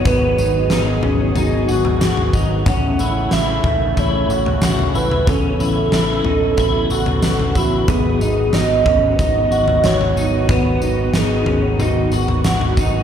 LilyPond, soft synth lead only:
\new Staff \with { instrumentName = "Soft synth lead" } { \time 4/4 \key gis \phrygian \tempo 4 = 92 b'4 gis'4 fis'4. r8 | fis''4 e''4 cis''4 r8 b'8 | a'2.~ a'8 fis'8 | gis'4 dis''4 dis''4 cis''4 |
b'4 gis'4 fis'4. r8 | }